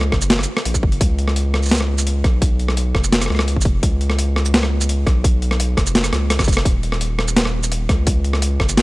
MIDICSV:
0, 0, Header, 1, 3, 480
1, 0, Start_track
1, 0, Tempo, 352941
1, 1370, Time_signature, 4, 2, 24, 8
1, 11997, End_track
2, 0, Start_track
2, 0, Title_t, "Sub bass"
2, 0, Program_c, 0, 38
2, 0, Note_on_c, 0, 37, 99
2, 153, Note_off_c, 0, 37, 0
2, 166, Note_on_c, 0, 30, 106
2, 633, Note_off_c, 0, 30, 0
2, 892, Note_on_c, 0, 34, 88
2, 1129, Note_on_c, 0, 30, 88
2, 1149, Note_off_c, 0, 34, 0
2, 1350, Note_off_c, 0, 30, 0
2, 1371, Note_on_c, 0, 37, 99
2, 3035, Note_off_c, 0, 37, 0
2, 3049, Note_on_c, 0, 35, 102
2, 3994, Note_off_c, 0, 35, 0
2, 4006, Note_on_c, 0, 29, 101
2, 4473, Note_off_c, 0, 29, 0
2, 4484, Note_on_c, 0, 37, 99
2, 4847, Note_on_c, 0, 29, 92
2, 4867, Note_off_c, 0, 37, 0
2, 5193, Note_off_c, 0, 29, 0
2, 5207, Note_on_c, 0, 37, 101
2, 6873, Note_off_c, 0, 37, 0
2, 6886, Note_on_c, 0, 35, 102
2, 7833, Note_off_c, 0, 35, 0
2, 7847, Note_on_c, 0, 29, 107
2, 8313, Note_off_c, 0, 29, 0
2, 8325, Note_on_c, 0, 37, 97
2, 8690, Note_on_c, 0, 29, 95
2, 8711, Note_off_c, 0, 37, 0
2, 9034, Note_off_c, 0, 29, 0
2, 9048, Note_on_c, 0, 27, 100
2, 10714, Note_off_c, 0, 27, 0
2, 10732, Note_on_c, 0, 37, 101
2, 11676, Note_off_c, 0, 37, 0
2, 11693, Note_on_c, 0, 30, 105
2, 11997, Note_off_c, 0, 30, 0
2, 11997, End_track
3, 0, Start_track
3, 0, Title_t, "Drums"
3, 16, Note_on_c, 9, 37, 48
3, 152, Note_off_c, 9, 37, 0
3, 165, Note_on_c, 9, 36, 67
3, 167, Note_on_c, 9, 37, 60
3, 290, Note_on_c, 9, 82, 65
3, 301, Note_off_c, 9, 36, 0
3, 303, Note_off_c, 9, 37, 0
3, 409, Note_on_c, 9, 38, 122
3, 409, Note_on_c, 9, 42, 76
3, 426, Note_off_c, 9, 82, 0
3, 531, Note_on_c, 9, 37, 62
3, 545, Note_off_c, 9, 38, 0
3, 545, Note_off_c, 9, 42, 0
3, 587, Note_on_c, 9, 82, 66
3, 667, Note_off_c, 9, 37, 0
3, 723, Note_off_c, 9, 82, 0
3, 770, Note_on_c, 9, 37, 78
3, 889, Note_on_c, 9, 42, 65
3, 906, Note_off_c, 9, 37, 0
3, 1010, Note_on_c, 9, 36, 64
3, 1011, Note_on_c, 9, 82, 65
3, 1025, Note_off_c, 9, 42, 0
3, 1129, Note_off_c, 9, 36, 0
3, 1129, Note_on_c, 9, 36, 106
3, 1147, Note_off_c, 9, 82, 0
3, 1252, Note_on_c, 9, 42, 34
3, 1265, Note_off_c, 9, 36, 0
3, 1370, Note_on_c, 9, 36, 116
3, 1371, Note_off_c, 9, 42, 0
3, 1371, Note_on_c, 9, 42, 76
3, 1506, Note_off_c, 9, 36, 0
3, 1507, Note_off_c, 9, 42, 0
3, 1612, Note_on_c, 9, 42, 35
3, 1735, Note_on_c, 9, 37, 52
3, 1748, Note_off_c, 9, 42, 0
3, 1852, Note_on_c, 9, 42, 67
3, 1871, Note_off_c, 9, 37, 0
3, 1988, Note_off_c, 9, 42, 0
3, 2093, Note_on_c, 9, 37, 60
3, 2214, Note_on_c, 9, 82, 28
3, 2229, Note_off_c, 9, 37, 0
3, 2252, Note_off_c, 9, 82, 0
3, 2252, Note_on_c, 9, 82, 36
3, 2292, Note_off_c, 9, 82, 0
3, 2292, Note_on_c, 9, 82, 41
3, 2331, Note_off_c, 9, 82, 0
3, 2331, Note_on_c, 9, 38, 118
3, 2331, Note_on_c, 9, 42, 72
3, 2331, Note_on_c, 9, 82, 44
3, 2372, Note_off_c, 9, 82, 0
3, 2372, Note_on_c, 9, 82, 50
3, 2410, Note_off_c, 9, 82, 0
3, 2410, Note_on_c, 9, 82, 56
3, 2455, Note_on_c, 9, 37, 61
3, 2467, Note_off_c, 9, 38, 0
3, 2467, Note_off_c, 9, 42, 0
3, 2546, Note_off_c, 9, 82, 0
3, 2591, Note_off_c, 9, 37, 0
3, 2694, Note_on_c, 9, 82, 67
3, 2811, Note_on_c, 9, 42, 65
3, 2830, Note_off_c, 9, 82, 0
3, 2947, Note_off_c, 9, 42, 0
3, 3049, Note_on_c, 9, 36, 111
3, 3050, Note_on_c, 9, 37, 48
3, 3050, Note_on_c, 9, 42, 35
3, 3185, Note_off_c, 9, 36, 0
3, 3186, Note_off_c, 9, 37, 0
3, 3186, Note_off_c, 9, 42, 0
3, 3288, Note_on_c, 9, 36, 114
3, 3289, Note_on_c, 9, 42, 74
3, 3424, Note_off_c, 9, 36, 0
3, 3425, Note_off_c, 9, 42, 0
3, 3529, Note_on_c, 9, 42, 33
3, 3651, Note_on_c, 9, 37, 55
3, 3665, Note_off_c, 9, 42, 0
3, 3768, Note_on_c, 9, 42, 67
3, 3787, Note_off_c, 9, 37, 0
3, 3904, Note_off_c, 9, 42, 0
3, 4007, Note_on_c, 9, 36, 62
3, 4008, Note_on_c, 9, 37, 58
3, 4130, Note_on_c, 9, 82, 69
3, 4143, Note_off_c, 9, 36, 0
3, 4144, Note_off_c, 9, 37, 0
3, 4250, Note_on_c, 9, 38, 113
3, 4250, Note_on_c, 9, 42, 78
3, 4266, Note_off_c, 9, 82, 0
3, 4372, Note_on_c, 9, 37, 61
3, 4372, Note_on_c, 9, 82, 72
3, 4386, Note_off_c, 9, 38, 0
3, 4386, Note_off_c, 9, 42, 0
3, 4436, Note_off_c, 9, 37, 0
3, 4436, Note_on_c, 9, 37, 51
3, 4492, Note_off_c, 9, 37, 0
3, 4492, Note_on_c, 9, 37, 43
3, 4508, Note_off_c, 9, 82, 0
3, 4553, Note_off_c, 9, 37, 0
3, 4553, Note_on_c, 9, 37, 35
3, 4611, Note_off_c, 9, 37, 0
3, 4611, Note_on_c, 9, 37, 80
3, 4730, Note_on_c, 9, 42, 60
3, 4747, Note_off_c, 9, 37, 0
3, 4848, Note_on_c, 9, 36, 59
3, 4866, Note_off_c, 9, 42, 0
3, 4910, Note_on_c, 9, 82, 68
3, 4967, Note_off_c, 9, 36, 0
3, 4967, Note_on_c, 9, 36, 104
3, 4969, Note_on_c, 9, 42, 34
3, 5046, Note_off_c, 9, 82, 0
3, 5103, Note_off_c, 9, 36, 0
3, 5105, Note_off_c, 9, 42, 0
3, 5208, Note_on_c, 9, 36, 113
3, 5208, Note_on_c, 9, 42, 73
3, 5344, Note_off_c, 9, 36, 0
3, 5344, Note_off_c, 9, 42, 0
3, 5452, Note_on_c, 9, 42, 36
3, 5571, Note_on_c, 9, 37, 57
3, 5588, Note_off_c, 9, 42, 0
3, 5692, Note_on_c, 9, 42, 69
3, 5707, Note_off_c, 9, 37, 0
3, 5828, Note_off_c, 9, 42, 0
3, 5933, Note_on_c, 9, 37, 63
3, 6055, Note_on_c, 9, 82, 67
3, 6069, Note_off_c, 9, 37, 0
3, 6175, Note_on_c, 9, 38, 114
3, 6175, Note_on_c, 9, 42, 75
3, 6191, Note_off_c, 9, 82, 0
3, 6299, Note_on_c, 9, 37, 63
3, 6311, Note_off_c, 9, 38, 0
3, 6311, Note_off_c, 9, 42, 0
3, 6435, Note_off_c, 9, 37, 0
3, 6538, Note_on_c, 9, 82, 73
3, 6653, Note_on_c, 9, 42, 68
3, 6674, Note_off_c, 9, 82, 0
3, 6789, Note_off_c, 9, 42, 0
3, 6889, Note_on_c, 9, 36, 103
3, 6894, Note_on_c, 9, 37, 50
3, 6894, Note_on_c, 9, 42, 34
3, 7025, Note_off_c, 9, 36, 0
3, 7030, Note_off_c, 9, 37, 0
3, 7030, Note_off_c, 9, 42, 0
3, 7130, Note_on_c, 9, 36, 116
3, 7134, Note_on_c, 9, 42, 79
3, 7266, Note_off_c, 9, 36, 0
3, 7270, Note_off_c, 9, 42, 0
3, 7373, Note_on_c, 9, 42, 37
3, 7494, Note_on_c, 9, 37, 60
3, 7509, Note_off_c, 9, 42, 0
3, 7613, Note_on_c, 9, 42, 74
3, 7630, Note_off_c, 9, 37, 0
3, 7749, Note_off_c, 9, 42, 0
3, 7849, Note_on_c, 9, 36, 62
3, 7855, Note_on_c, 9, 37, 66
3, 7855, Note_on_c, 9, 42, 38
3, 7975, Note_on_c, 9, 82, 70
3, 7985, Note_off_c, 9, 36, 0
3, 7991, Note_off_c, 9, 37, 0
3, 7991, Note_off_c, 9, 42, 0
3, 8093, Note_on_c, 9, 38, 114
3, 8093, Note_on_c, 9, 42, 78
3, 8111, Note_off_c, 9, 82, 0
3, 8214, Note_on_c, 9, 37, 67
3, 8214, Note_on_c, 9, 82, 67
3, 8229, Note_off_c, 9, 38, 0
3, 8229, Note_off_c, 9, 42, 0
3, 8332, Note_off_c, 9, 37, 0
3, 8332, Note_on_c, 9, 37, 68
3, 8332, Note_on_c, 9, 42, 41
3, 8350, Note_off_c, 9, 82, 0
3, 8468, Note_off_c, 9, 37, 0
3, 8468, Note_off_c, 9, 42, 0
3, 8571, Note_on_c, 9, 37, 80
3, 8571, Note_on_c, 9, 42, 65
3, 8690, Note_on_c, 9, 36, 60
3, 8692, Note_off_c, 9, 37, 0
3, 8692, Note_on_c, 9, 37, 77
3, 8692, Note_on_c, 9, 82, 32
3, 8707, Note_off_c, 9, 42, 0
3, 8756, Note_off_c, 9, 82, 0
3, 8756, Note_on_c, 9, 82, 40
3, 8809, Note_off_c, 9, 36, 0
3, 8809, Note_on_c, 9, 36, 109
3, 8814, Note_off_c, 9, 82, 0
3, 8814, Note_on_c, 9, 42, 36
3, 8814, Note_on_c, 9, 82, 45
3, 8828, Note_off_c, 9, 37, 0
3, 8872, Note_off_c, 9, 82, 0
3, 8872, Note_on_c, 9, 82, 54
3, 8933, Note_on_c, 9, 37, 84
3, 8945, Note_off_c, 9, 36, 0
3, 8950, Note_off_c, 9, 42, 0
3, 9008, Note_off_c, 9, 82, 0
3, 9049, Note_on_c, 9, 36, 122
3, 9053, Note_on_c, 9, 42, 77
3, 9069, Note_off_c, 9, 37, 0
3, 9185, Note_off_c, 9, 36, 0
3, 9189, Note_off_c, 9, 42, 0
3, 9292, Note_on_c, 9, 42, 39
3, 9414, Note_on_c, 9, 37, 58
3, 9428, Note_off_c, 9, 42, 0
3, 9532, Note_on_c, 9, 42, 73
3, 9550, Note_off_c, 9, 37, 0
3, 9668, Note_off_c, 9, 42, 0
3, 9774, Note_on_c, 9, 37, 65
3, 9897, Note_on_c, 9, 82, 68
3, 9910, Note_off_c, 9, 37, 0
3, 10017, Note_on_c, 9, 38, 119
3, 10017, Note_on_c, 9, 42, 86
3, 10033, Note_off_c, 9, 82, 0
3, 10138, Note_on_c, 9, 37, 68
3, 10153, Note_off_c, 9, 38, 0
3, 10153, Note_off_c, 9, 42, 0
3, 10274, Note_off_c, 9, 37, 0
3, 10378, Note_on_c, 9, 82, 70
3, 10494, Note_on_c, 9, 42, 68
3, 10514, Note_off_c, 9, 82, 0
3, 10630, Note_off_c, 9, 42, 0
3, 10732, Note_on_c, 9, 36, 110
3, 10733, Note_on_c, 9, 37, 54
3, 10733, Note_on_c, 9, 42, 37
3, 10868, Note_off_c, 9, 36, 0
3, 10869, Note_off_c, 9, 37, 0
3, 10869, Note_off_c, 9, 42, 0
3, 10971, Note_on_c, 9, 42, 79
3, 10973, Note_on_c, 9, 36, 116
3, 11107, Note_off_c, 9, 42, 0
3, 11109, Note_off_c, 9, 36, 0
3, 11213, Note_on_c, 9, 42, 38
3, 11334, Note_on_c, 9, 37, 57
3, 11349, Note_off_c, 9, 42, 0
3, 11453, Note_on_c, 9, 42, 76
3, 11470, Note_off_c, 9, 37, 0
3, 11589, Note_off_c, 9, 42, 0
3, 11693, Note_on_c, 9, 36, 63
3, 11694, Note_on_c, 9, 37, 64
3, 11817, Note_on_c, 9, 82, 66
3, 11829, Note_off_c, 9, 36, 0
3, 11830, Note_off_c, 9, 37, 0
3, 11933, Note_on_c, 9, 38, 124
3, 11933, Note_on_c, 9, 42, 82
3, 11953, Note_off_c, 9, 82, 0
3, 11997, Note_off_c, 9, 38, 0
3, 11997, Note_off_c, 9, 42, 0
3, 11997, End_track
0, 0, End_of_file